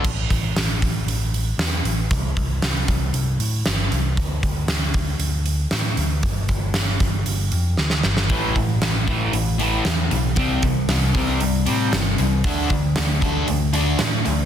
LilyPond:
<<
  \new Staff \with { instrumentName = "Overdriven electric guitar" } { \clef bass \time 4/4 \key a \minor \tempo 4 = 116 r1 | r1 | r1 | r1 |
<a, e a>8 <a, e>8 <a, e>8 <a, e a>8 <a, e>8 <a, e a>8 <a, e>8 <a, e>8 | <c g c'>8 <c g>8 <c g>8 <c g c'>8 <c g>8 <c g c'>8 <c g>8 <c g>8 | <d a d'>8 <d a>8 <d a>8 <d a d'>8 <d a>8 <d a d'>8 <d a>8 <d a>8 | }
  \new Staff \with { instrumentName = "Overdriven electric guitar" } { \clef bass \time 4/4 \key a \minor r1 | r1 | r1 | r1 |
<a, e a>8 <a, e>8 <a, e>8 <a, e a>8 <a, e>8 <a, e a>8 <a, e>8 <a, e>8 | <c g c'>8 <c g>8 <c g>8 <c g c'>8 <c g>8 <c g c'>8 <c g>8 <c g>8 | <d a d'>8 <d a>8 <d a>8 <d a d'>8 <d a>8 <d a d'>8 <d a>8 <d a>8 | }
  \new Staff \with { instrumentName = "Picked electric bass" } { \clef bass \time 4/4 \key a \minor a,,8 a,,8 a,,4 a,,4 e,8 a,,8 | c,8 c,8 c,8 c,8 c,8 a,8 g,,8 c,8 | d,8 d,8 d,4 d,4 a,8 d,8 | g,,8 g,,8 g,,8 g,,8 g,,8 f,8 d,8 g,,8 |
a,,8 a,,8 a,,4 a,,4 e,8 b,,8 | c,8 c,8 c,8 c,8 c,8 a,8 g,,8 c,8 | d,8 d,8 d,4 d,4 a,8 d,8 | }
  \new DrumStaff \with { instrumentName = "Drums" } \drummode { \time 4/4 <cymc bd>8 <hho bd>8 <hho sn>8 <hho bd>8 hho8 hho8 <hho sn>8 hho8 | <hho bd>8 <hho bd>8 <hho sn>8 <hho bd>8 hho8 hho8 <hho sn>8 hho8 | <hho bd>8 <hho bd>8 <hho sn>8 <hho bd>8 hho8 hho8 <hho sn>8 hho8 | <hho bd>8 <hho bd>8 <hho sn>8 <hho bd>8 hho8 hho8 sn16 sn16 sn16 sn16 |
<hho bd>8 <hho bd>8 <hho sn>8 <hho bd>8 hho8 hho8 <hho sn>8 hho8 | <hho bd>8 <hho bd>8 <hho sn>8 <hho bd>8 hho8 hho8 <hho sn>8 hho8 | <hho bd>8 <hho bd>8 <hho sn>8 <hho bd>8 hho8 hho8 <hho sn>8 hho8 | }
>>